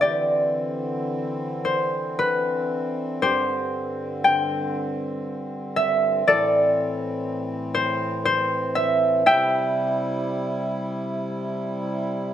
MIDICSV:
0, 0, Header, 1, 3, 480
1, 0, Start_track
1, 0, Tempo, 1071429
1, 7, Time_signature, 3, 2, 24, 8
1, 1447, Tempo, 1006711
1, 4327, Tempo, 1034483
1, 4807, Tempo, 1086957
1, 5704, End_track
2, 0, Start_track
2, 0, Title_t, "Harp"
2, 0, Program_c, 0, 46
2, 0, Note_on_c, 0, 76, 64
2, 4, Note_on_c, 0, 74, 64
2, 10, Note_on_c, 0, 67, 47
2, 527, Note_off_c, 0, 76, 0
2, 738, Note_on_c, 0, 72, 71
2, 831, Note_off_c, 0, 74, 0
2, 980, Note_on_c, 0, 71, 74
2, 1007, Note_off_c, 0, 72, 0
2, 1064, Note_off_c, 0, 67, 0
2, 1443, Note_on_c, 0, 72, 86
2, 1448, Note_on_c, 0, 67, 59
2, 1472, Note_off_c, 0, 71, 0
2, 1930, Note_on_c, 0, 79, 86
2, 2387, Note_off_c, 0, 72, 0
2, 2570, Note_off_c, 0, 67, 0
2, 2655, Note_on_c, 0, 76, 84
2, 2670, Note_off_c, 0, 79, 0
2, 2899, Note_on_c, 0, 74, 93
2, 2901, Note_on_c, 0, 69, 65
2, 3476, Note_off_c, 0, 76, 0
2, 3600, Note_on_c, 0, 72, 85
2, 3780, Note_off_c, 0, 74, 0
2, 3841, Note_off_c, 0, 72, 0
2, 3843, Note_on_c, 0, 72, 88
2, 3949, Note_off_c, 0, 69, 0
2, 4080, Note_on_c, 0, 76, 89
2, 4321, Note_off_c, 0, 76, 0
2, 4323, Note_on_c, 0, 76, 69
2, 4325, Note_on_c, 0, 79, 89
2, 4774, Note_off_c, 0, 72, 0
2, 5267, Note_off_c, 0, 76, 0
2, 5267, Note_off_c, 0, 79, 0
2, 5704, End_track
3, 0, Start_track
3, 0, Title_t, "Harmonium"
3, 0, Program_c, 1, 20
3, 11, Note_on_c, 1, 60, 70
3, 12, Note_on_c, 1, 52, 58
3, 14, Note_on_c, 1, 50, 60
3, 1435, Note_off_c, 1, 52, 0
3, 1441, Note_on_c, 1, 43, 66
3, 2879, Note_off_c, 1, 43, 0
3, 2881, Note_off_c, 1, 50, 0
3, 2893, Note_on_c, 1, 45, 72
3, 2895, Note_on_c, 1, 52, 68
3, 4310, Note_off_c, 1, 60, 0
3, 4311, Note_off_c, 1, 45, 0
3, 4312, Note_off_c, 1, 52, 0
3, 4321, Note_on_c, 1, 48, 70
3, 4321, Note_on_c, 1, 55, 64
3, 4326, Note_on_c, 1, 64, 84
3, 5704, Note_off_c, 1, 48, 0
3, 5704, Note_off_c, 1, 55, 0
3, 5704, Note_off_c, 1, 64, 0
3, 5704, End_track
0, 0, End_of_file